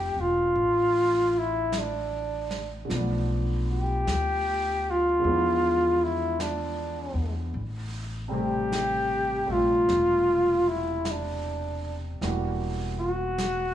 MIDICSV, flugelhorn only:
0, 0, Header, 1, 2, 480
1, 0, Start_track
1, 0, Tempo, 1165049
1, 1197, Time_signature, 4, 2, 24, 8
1, 5661, End_track
2, 0, Start_track
2, 0, Title_t, "Flugelhorn"
2, 0, Program_c, 0, 56
2, 0, Note_on_c, 0, 67, 85
2, 83, Note_on_c, 0, 65, 80
2, 90, Note_off_c, 0, 67, 0
2, 569, Note_on_c, 0, 64, 72
2, 575, Note_off_c, 0, 65, 0
2, 735, Note_on_c, 0, 62, 60
2, 741, Note_off_c, 0, 64, 0
2, 1124, Note_off_c, 0, 62, 0
2, 1533, Note_on_c, 0, 67, 93
2, 2020, Note_on_c, 0, 65, 82
2, 2026, Note_off_c, 0, 67, 0
2, 2488, Note_on_c, 0, 64, 74
2, 2494, Note_off_c, 0, 65, 0
2, 2642, Note_off_c, 0, 64, 0
2, 2644, Note_on_c, 0, 62, 59
2, 3017, Note_off_c, 0, 62, 0
2, 3438, Note_on_c, 0, 67, 89
2, 3921, Note_on_c, 0, 65, 80
2, 3927, Note_off_c, 0, 67, 0
2, 4400, Note_on_c, 0, 64, 73
2, 4406, Note_off_c, 0, 65, 0
2, 4576, Note_on_c, 0, 62, 60
2, 4582, Note_off_c, 0, 64, 0
2, 4961, Note_off_c, 0, 62, 0
2, 5354, Note_on_c, 0, 66, 92
2, 5661, Note_off_c, 0, 66, 0
2, 5661, End_track
0, 0, End_of_file